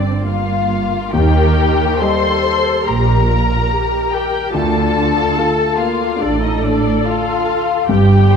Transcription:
0.00 0.86 G1 soft
0.00 0.86 G2 soft
0.00 1.08 A#3 soft
0.00 0.23 C4 soft
0.00 0.20 D4 soft
0.00 1.08 G4 soft
0.00 0.21 D5 medium
0.00 1.08 D5 soft
0.24 1.12 A#3 soft
0.24 1.12 F4 medium
0.24 1.13 F5 medium
1.12 1.86 D#2 medium
1.12 1.98 D#2 medium
1.12 1.86 D#3 medium
1.12 2.00 G4 medium
1.12 1.96 A#4 medium
1.12 1.99 G5 medium
2.00 4.50 G3 soft
2.00 4.50 G4 soft
2.00 2.85 A4 medium
2.00 2.85 C5 medium
2.00 4.50 D#5 soft
2.00 2.85 C6 medium
2.84 3.56 A#1 medium
2.84 3.56 A#2 medium
2.84 3.27 G4 medium
2.84 4.10 A#4 medium
2.84 4.12 A#5 medium
3.28 3.69 A#4 medium
3.70 4.12 G4 medium
4.11 4.53 G4 medium
4.11 4.54 A#4 medium
4.11 4.53 G5 medium
4.52 5.23 D2 medium
4.52 5.35 D2 soft
4.52 5.23 D3 medium
4.52 5.35 F4 medium
4.52 5.79 A4 medium
4.52 5.76 A5 medium
5.37 7.85 A3 soft
5.37 7.85 F4 soft
5.37 5.79 A4 medium
5.37 7.85 F5 soft
5.78 6.20 A#3 medium
5.78 6.20 F4 medium
5.78 6.21 F5 medium
6.20 6.91 A1 medium
6.20 6.91 A2 medium
6.20 6.41 D4 medium
6.20 7.88 A4 medium
6.20 6.41 D5 medium
6.42 6.62 D#4 medium
6.42 6.63 D#5 medium
6.62 7.04 D4 medium
6.62 7.04 D5 medium
7.05 7.88 F4 medium
7.05 7.89 F5 medium
7.87 8.37 G1 medium
7.87 8.37 G2 medium
7.87 8.37 G4 medium
7.87 8.31 G4 medium
7.87 8.37 G5 medium
8.32 8.37 C5 medium

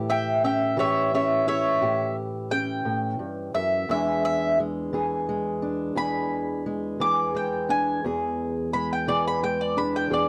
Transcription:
0.00 1.80 A2 medium
0.00 0.76 E3 medium
0.00 1.47 E4 medium
0.00 0.76 G4 medium
0.10 0.42 E5 medium
0.10 0.43 G5 medium
0.44 1.13 C#4 medium
0.44 0.76 E5 medium
0.44 0.78 G5 medium
0.77 3.89 E3 medium
0.77 1.81 G4 medium
0.77 1.11 C#5 medium
0.77 1.13 E5 medium
1.14 2.51 C#4 soft
1.14 1.46 C#5 medium
1.14 1.47 E5 medium
1.47 3.91 E4 medium
1.47 2.13 C#5 medium
1.47 2.15 E5 medium
1.81 2.84 A2 medium
1.81 3.85 G4 medium
2.51 3.85 C#4 soft
2.51 3.52 G5 loud
2.85 3.19 A2 medium
3.19 3.54 G2 medium
3.55 3.89 F#2 medium
3.55 3.88 E5 medium
3.89 5.95 E2 medium
3.89 4.92 E3 medium
3.89 4.59 G#3 medium
3.89 5.62 D4 medium
3.89 4.94 G#4 medium
3.89 4.23 E5 medium
4.25 4.58 E5 medium
4.60 5.28 G#3 medium
4.93 6.99 E3 medium
4.93 5.96 G#4 medium
5.29 6.65 G#3 medium
5.62 7.68 D4 medium
5.95 8.03 E2 medium
5.95 7.00 G#4 medium
5.95 6.98 B5 medium
6.66 7.33 G#3 soft
7.00 9.07 E3 medium
7.00 8.00 G#4 medium
7.00 7.34 D6 medium
7.35 8.73 G#3 soft
7.35 7.69 G5 medium
7.69 8.00 D4 medium
7.69 8.03 G#5 medium
8.04 10.09 E2 medium
8.04 9.07 G#4 medium
8.73 9.42 G#3 medium
8.73 8.89 B5 medium
8.93 9.08 G5 medium
9.08 10.29 E3 medium
9.08 10.10 G#4 medium
9.08 9.24 D5 medium
9.28 9.43 B5 medium
9.43 10.29 G#3 medium
9.43 9.59 G5 medium
9.61 9.77 D5 medium
9.77 10.29 D4 medium
9.77 9.94 B5 medium
9.96 10.11 G5 medium
10.10 10.29 E2 medium
10.10 10.29 G#4 medium
10.10 10.29 D5 medium

